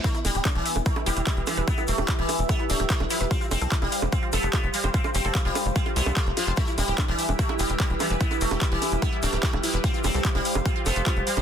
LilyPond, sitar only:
\new Staff \with { instrumentName = "Sitar" } { \time 4/4 \key e \phrygian \tempo 4 = 147 a16 r16 g8 r16 e8 r16 a16 r16 g16 r16 g16 r16 e16 r16 | b16 r16 a8 r16 e8 r16 b16 r16 a16 r16 a16 r16 f16 r16 | c'16 r16 c'8 r16 g8 r16 c'16 r16 b16 r16 b16 r16 g16 r16 | c'16 r16 c'8 r16 g8 r16 c'16 r16 b16 r16 a16 r16 f16 r16 |
a16 r16 g8 r16 e8 r16 a16 r16 g16 r16 g16 r16 e16 r16 | b16 r16 a8 r16 e8 r16 b16 r16 a16 r16 a16 r16 f16 r16 | c'16 r16 c'8 r16 g8 r16 c'16 r16 b16 r16 b16 r16 g16 r16 | }